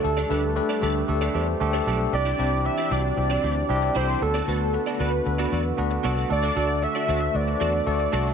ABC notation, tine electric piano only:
X:1
M:4/4
L:1/8
Q:1/4=115
K:Bphr
V:1 name="Tine electric piano"
[A,DGA] [A,DGB] [A,DGB] [A,DGA] [A,DGA] [A,DGc] [A,DGA] [A,DGA] | [CDEG] [CDEG] [CDEG] [CDEF] [CDEG] [CDEG] [CDEG] [CDEA] | [B,DFA] [B,DFB] [B,DFB] [B,DFB] [B,DFA] [B,DFA] [B,DFB] [B,DFA] | [A,DFA] [A,DFA] [A,DFA] [A,DFc] [A,DFB] [A,DFA] [A,DFA] [A,DFA] |]